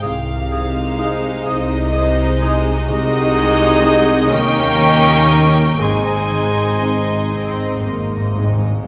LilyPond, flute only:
\new Staff \with { instrumentName = "Flute" } { \time 6/8 \key aes \major \tempo 4. = 41 ees'''8 ees'''8 ees'''8 ees'''8 ees'''8 ees'''8 | ees'''4. des'''4. | c'''2~ c'''8 r8 | }